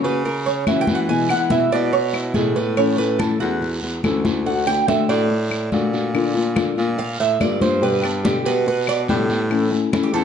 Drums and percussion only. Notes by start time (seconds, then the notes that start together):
0.04 high conga, short guiro
0.25 high conga, long guiro
0.47 high conga
0.67 high conga, short guiro, claves
0.87 high conga, short guiro
1.09 high conga, long guiro
1.29 high conga, claves
1.50 high conga, short guiro
1.72 short guiro
1.93 high conga, long guiro
2.13 high conga, claves
2.34 high conga, short guiro
2.55 high conga, short guiro
2.76 high conga, long guiro, claves
2.98 high conga
3.20 high conga, short guiro, claves
3.42 high conga, short guiro
3.62 high conga, long guiro
3.83 high conga
4.04 high conga, short guiro, claves
4.25 high conga, short guiro
4.47 high conga, long guiro
4.67 high conga, claves
4.88 high conga, short guiro
5.09 short guiro
5.30 high conga, long guiro
5.51 high conga, claves
5.72 high conga, short guiro
5.93 high conga, short guiro
6.15 high conga, long guiro, claves
6.36 high conga
6.56 high conga, short guiro, claves
6.78 high conga, short guiro
6.98 high conga, long guiro
7.20 high conga
7.40 high conga, short guiro, claves
7.61 high conga, short guiro
7.83 high conga, long guiro
8.04 high conga, claves
8.25 high conga, short guiro
8.46 short guiro
8.66 high conga, long guiro
8.87 high conga, claves
9.08 high conga, short guiro
9.30 high conga, short guiro
9.51 high conga, long guiro, claves
9.72 high conga
9.93 high conga, short guiro, claves
10.15 high conga, short guiro